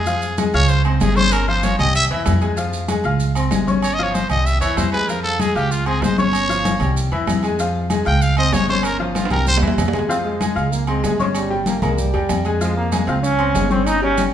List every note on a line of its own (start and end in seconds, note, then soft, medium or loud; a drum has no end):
0.00 0.48 F2 medium
0.00 0.38 G#4 loud
0.06 0.32 F3 medium
0.06 0.32 F4 medium
0.06 0.32 F5 medium
0.06 high conga soft
0.06 maracas medium
0.22 high conga soft
0.22 maracas medium
0.38 0.51 G#3 medium
0.38 0.51 G#4 medium
0.38 0.51 G#5 medium
0.38 high conga loud
0.38 low timbale medium
0.38 low agogo loud
0.38 maracas medium
0.53 0.97 C#2 loud
0.53 0.79 F4 medium
0.53 0.70 C#5 loud
0.53 0.80 F5 medium
0.53 0.80 F6 medium
0.53 high conga soft
0.53 low agogo medium
0.53 maracas soft
0.68 0.84 C5 medium
0.68 high conga soft
0.68 maracas medium
0.85 0.98 C4 medium
0.85 1.01 D#4 medium
0.85 0.99 C5 medium
0.85 0.99 C6 medium
0.85 high conga soft
0.85 low agogo loud
1.00 1.74 G1 loud
1.00 1.14 G#3 medium
1.00 1.18 G#4 loud
1.00 1.14 G#4 medium
1.00 1.14 G#5 medium
1.00 high conga medium
1.00 low timbale medium
1.00 low agogo medium
1.00 maracas medium
1.16 1.42 C#4 medium
1.16 1.34 C5 loud
1.16 1.42 C#5 medium
1.16 1.42 C#6 medium
1.16 high conga medium
1.16 maracas soft
1.32 1.48 A#4 medium
1.32 high conga soft
1.32 low agogo loud
1.32 maracas medium
1.48 1.73 F3 medium
1.48 1.74 F4 medium
1.48 1.65 C5 loud
1.48 1.74 F5 medium
1.48 high conga soft
1.63 1.78 C#5 medium
1.63 high conga loud
1.63 low timbale medium
1.63 low agogo medium
1.63 maracas medium
1.79 2.08 C2 loud
1.79 2.05 G3 medium
1.79 2.05 G4 medium
1.79 1.94 D#5 loud
1.79 2.05 G5 medium
1.79 low conga medium
1.79 low agogo loud
1.79 maracas soft
1.95 2.05 E5 loud
1.95 high conga soft
1.95 maracas medium
2.11 2.25 E2 medium
2.11 2.36 E3 loud
2.11 2.37 E4 medium
2.11 2.37 E5 medium
2.11 high conga soft
2.11 low agogo medium
2.26 3.00 F2 loud
2.26 high conga medium
2.26 low timbale medium
2.26 low agogo loud
2.26 maracas medium
2.41 2.55 G#3 medium
2.41 2.55 G#4 medium
2.41 2.55 G#5 medium
2.41 high conga soft
2.41 low agogo medium
2.41 maracas soft
2.57 2.83 F3 medium
2.57 2.83 F4 medium
2.57 2.83 F5 medium
2.57 high conga soft
2.57 maracas medium
2.73 high conga soft
2.73 maracas medium
2.88 3.01 G#3 medium
2.88 3.02 G#4 medium
2.88 3.02 G#5 medium
2.88 high conga loud
2.88 low timbale medium
2.88 low agogo loud
2.88 maracas medium
3.04 3.48 C#2 loud
3.04 3.30 F4 medium
3.04 3.31 F5 medium
3.04 3.31 F6 medium
3.04 high conga soft
3.04 low agogo medium
3.04 maracas soft
3.20 high conga soft
3.20 maracas medium
3.35 3.49 C4 medium
3.35 3.49 C5 medium
3.35 3.49 C6 medium
3.35 high conga soft
3.35 low agogo loud
3.35 maracas medium
3.51 4.24 G1 medium
3.51 3.64 G#3 medium
3.51 3.64 G#4 medium
3.51 3.65 G#5 medium
3.51 high conga medium
3.51 low timbale medium
3.51 low agogo medium
3.51 maracas medium
3.67 3.93 C#4 medium
3.67 3.93 C#5 medium
3.67 3.93 C#6 medium
3.67 high conga medium
3.67 maracas soft
3.82 3.95 C#5 medium
3.82 high conga soft
3.82 low agogo loud
3.82 maracas medium
3.94 4.05 D#5 loud
3.99 4.25 F3 medium
3.99 4.25 F4 medium
3.99 4.25 F5 medium
3.99 high conga soft
4.03 4.16 C#5 medium
4.14 4.30 C5 medium
4.14 high conga loud
4.14 low timbale medium
4.14 low agogo medium
4.14 maracas medium
4.29 4.59 C2 medium
4.29 4.55 G3 medium
4.29 4.55 G4 medium
4.29 4.47 D#5 loud
4.29 4.56 G5 medium
4.29 low conga medium
4.29 low agogo loud
4.29 maracas soft
4.46 4.60 E5 loud
4.46 high conga soft
4.46 maracas medium
4.61 4.76 E2 medium
4.61 4.87 E3 medium
4.61 4.87 E4 medium
4.61 4.79 C#5 medium
4.61 4.87 E5 medium
4.61 high conga soft
4.61 low agogo medium
4.61 maracas medium
4.77 5.50 F2 medium
4.77 4.92 C5 medium
4.77 high conga medium
4.77 low timbale medium
4.77 low agogo loud
4.77 maracas medium
4.92 5.06 G#3 medium
4.92 5.06 G#4 medium
4.92 5.10 B4 loud
4.92 5.06 G#5 medium
4.92 high conga soft
4.92 low agogo medium
4.92 maracas soft
5.08 5.35 F3 medium
5.08 5.35 F4 medium
5.08 5.23 A#4 medium
5.08 5.35 F5 medium
5.08 high conga soft
5.08 maracas medium
5.23 5.42 A4 loud
5.23 high conga soft
5.40 5.53 G#3 medium
5.40 5.57 G#4 medium
5.40 5.53 G#4 medium
5.40 5.53 G#5 medium
5.40 high conga loud
5.40 low timbale medium
5.40 low agogo loud
5.40 maracas medium
5.55 5.99 C#2 loud
5.55 5.81 F4 medium
5.55 5.73 G4 medium
5.55 5.81 F5 medium
5.55 5.82 F6 medium
5.55 high conga soft
5.55 low agogo medium
5.55 maracas soft
5.71 5.88 F4 medium
5.71 high conga soft
5.71 maracas medium
5.86 6.00 C4 medium
5.86 6.04 G#4 medium
5.86 6.00 C5 medium
5.86 6.00 C6 medium
5.86 high conga soft
5.86 low agogo loud
6.02 6.75 G1 medium
6.02 6.15 G#3 medium
6.02 6.15 G#4 medium
6.02 6.18 C5 medium
6.02 6.16 G#5 medium
6.02 high conga medium
6.02 low timbale medium
6.02 low agogo medium
6.02 maracas medium
6.18 6.44 C#4 medium
6.18 6.44 C#5 medium
6.18 6.93 C#5 loud
6.18 6.44 C#6 medium
6.18 high conga medium
6.18 maracas soft
6.33 high conga soft
6.33 low agogo loud
6.33 maracas medium
6.49 6.75 F3 medium
6.49 6.75 F4 medium
6.49 6.75 F5 medium
6.49 high conga soft
6.49 maracas medium
6.65 high conga loud
6.65 low timbale medium
6.65 low agogo medium
6.65 maracas medium
6.80 7.10 C2 loud
6.80 7.07 G3 medium
6.80 7.07 G4 medium
6.80 7.07 G5 medium
6.80 low conga medium
6.80 low agogo loud
6.80 maracas soft
6.97 high conga soft
6.97 maracas medium
7.11 7.26 E2 medium
7.11 7.38 E3 medium
7.11 7.38 E4 medium
7.11 7.38 E5 medium
7.11 high conga soft
7.11 low agogo medium
7.27 8.00 F2 loud
7.27 high conga medium
7.27 low timbale medium
7.27 low agogo loud
7.27 maracas medium
7.43 7.56 G#3 medium
7.43 7.57 G#4 medium
7.43 7.57 G#5 medium
7.43 high conga soft
7.43 low agogo loud
7.43 maracas soft
7.59 7.85 F3 medium
7.59 7.85 F4 medium
7.59 7.85 F5 medium
7.59 high conga soft
7.59 maracas medium
7.75 high conga soft
7.90 8.03 G#3 medium
7.90 8.04 G#4 medium
7.90 8.04 G#5 medium
7.90 high conga loud
7.90 low timbale medium
7.90 low agogo loud
7.90 maracas medium
8.05 8.50 C#2 loud
8.05 8.32 F4 medium
8.05 8.32 F5 medium
8.05 8.23 G5 loud
8.05 8.32 F6 medium
8.05 high conga soft
8.05 low agogo medium
8.05 maracas soft
8.22 8.37 F5 loud
8.22 high conga soft
8.22 maracas medium
8.37 8.51 C4 medium
8.37 8.51 C5 medium
8.37 8.55 D#5 loud
8.37 8.51 C6 medium
8.37 high conga soft
8.37 low agogo loud
8.52 9.26 G1 medium
8.52 8.66 G#3 medium
8.52 8.67 G#4 medium
8.52 8.68 C#5 medium
8.52 8.66 G#5 medium
8.52 high conga medium
8.52 low timbale medium
8.52 low agogo medium
8.52 maracas medium
8.68 8.94 C#4 medium
8.68 8.86 C5 medium
8.68 8.95 C#5 medium
8.68 8.95 C#6 medium
8.68 high conga medium
8.68 maracas soft
8.83 8.99 A#4 medium
8.83 high conga soft
8.83 low agogo loud
8.83 maracas medium
8.99 9.26 F3 medium
8.99 9.16 C#4 soft
8.99 9.25 F4 medium
8.99 9.26 F5 medium
8.99 high conga soft
9.15 9.31 F4 medium
9.15 high conga loud
9.15 high timbale medium
9.15 low agogo medium
9.15 maracas medium
9.25 high timbale medium
9.30 9.60 C2 loud
9.30 9.57 G3 medium
9.30 9.57 G4 medium
9.30 9.46 A#4 loud
9.30 9.57 G5 medium
9.30 low conga medium
9.30 low agogo loud
9.30 maracas soft
9.46 9.57 C5 loud
9.46 high conga medium
9.46 maracas medium
9.57 low timbale loud
9.61 9.77 E2 medium
9.61 9.88 E3 medium
9.61 9.88 E4 medium
9.61 9.88 E5 medium
9.61 high conga medium
9.61 low agogo medium
9.68 low timbale medium
9.78 10.51 F2 medium
9.78 low conga medium
9.78 low timbale medium
9.78 low agogo loud
9.78 maracas medium
9.88 low timbale loud
9.93 10.06 G#3 medium
9.93 10.07 G#4 medium
9.93 10.07 G#5 medium
9.93 low conga medium
9.93 low agogo medium
9.93 maracas soft
9.99 low timbale medium
10.09 10.35 F3 medium
10.09 10.16 C4 loud
10.09 10.35 F4 medium
10.09 10.35 F5 medium
10.09 high conga soft
10.09 maracas medium
10.24 10.73 G#3 medium
10.24 high conga soft
10.40 10.54 G#3 medium
10.40 10.54 G#4 medium
10.40 10.54 G#5 medium
10.40 high conga medium
10.40 low timbale medium
10.40 low agogo loud
10.40 maracas medium
10.55 11.00 C#2 loud
10.55 10.82 F4 medium
10.55 10.82 F5 medium
10.55 10.82 F6 medium
10.55 high conga soft
10.55 low agogo medium
10.55 maracas soft
10.71 10.88 A#3 medium
10.71 high conga soft
10.71 maracas medium
10.87 11.17 G#3 medium
10.87 11.01 C4 medium
10.87 11.01 C5 medium
10.87 11.01 C6 medium
10.87 high conga soft
10.87 low agogo loud
11.04 11.77 G1 medium
11.04 11.17 G#3 medium
11.04 11.17 G#4 medium
11.04 11.17 G#5 medium
11.04 high conga medium
11.04 low timbale medium
11.04 low agogo medium
11.04 maracas medium
11.19 11.27 G#3 medium
11.19 11.45 C#4 medium
11.19 11.45 C#5 medium
11.19 11.46 C#6 medium
11.19 high conga medium
11.19 maracas soft
11.35 11.65 G3 medium
11.35 high conga soft
11.35 low agogo loud
11.35 maracas medium
11.50 11.76 G3 medium
11.50 11.76 G4 medium
11.50 11.77 G5 medium
11.50 high conga soft
11.66 11.83 A#3 medium
11.66 high conga loud
11.66 low timbale medium
11.66 low agogo medium
11.66 maracas medium
11.82 12.12 C2 loud
11.82 11.99 G#3 medium
11.82 12.08 A#3 medium
11.82 12.08 A#4 medium
11.82 12.08 A#5 medium
11.82 low conga medium
11.82 low agogo loud
11.82 maracas soft
11.97 12.45 G3 medium
11.97 high conga soft
11.97 low conga medium
11.97 maracas medium
12.14 12.29 E2 medium
12.14 12.40 G3 medium
12.14 12.39 G4 loud
12.14 12.40 G5 medium
12.14 high conga soft
12.14 low agogo medium
12.29 13.02 F2 loud
12.29 high conga medium
12.29 low timbale medium
12.29 low agogo loud
12.29 maracas medium
12.45 12.58 G#3 medium
12.45 12.59 G#4 medium
12.45 12.59 G#5 medium
12.45 high conga soft
12.45 low agogo medium
12.45 maracas soft
12.61 12.87 F3 medium
12.61 12.76 G#3 loud
12.61 12.87 F4 medium
12.61 12.87 F5 medium
12.61 high conga soft
12.61 maracas medium
12.77 13.06 A#3 medium
12.77 high conga soft
12.92 13.05 G#3 medium
12.92 13.05 G#4 medium
12.92 13.05 G#5 medium
12.92 high conga loud
12.92 low timbale medium
12.92 low agogo loud
12.92 maracas medium
13.07 13.51 C#2 loud
13.07 13.22 C4 loud
13.07 13.34 F4 medium
13.07 13.34 F5 medium
13.07 13.34 F6 medium
13.07 high conga soft
13.07 low agogo medium
13.07 maracas soft
13.23 13.67 C#4 loud
13.23 high conga soft
13.23 maracas medium
13.39 13.52 C4 medium
13.39 13.52 C5 medium
13.39 13.52 C6 medium
13.39 high conga soft
13.39 low agogo loud
13.55 14.28 G1 loud
13.55 13.68 G#3 medium
13.55 13.68 G#4 medium
13.55 13.68 G#5 medium
13.55 high conga medium
13.55 low timbale medium
13.55 low agogo medium
13.55 maracas medium
13.70 13.88 C4 loud
13.70 13.96 C#4 medium
13.70 13.96 C#5 medium
13.70 13.96 C#6 medium
13.70 high conga medium
13.70 maracas soft
13.86 14.02 D#4 loud
13.86 high conga soft
13.86 low agogo loud
13.86 maracas medium
14.02 14.28 G3 medium
14.02 14.32 C#4 loud
14.02 14.28 G4 medium
14.02 14.28 G5 medium
14.02 high conga soft
14.18 high conga loud
14.18 low timbale medium
14.18 low agogo medium
14.18 maracas medium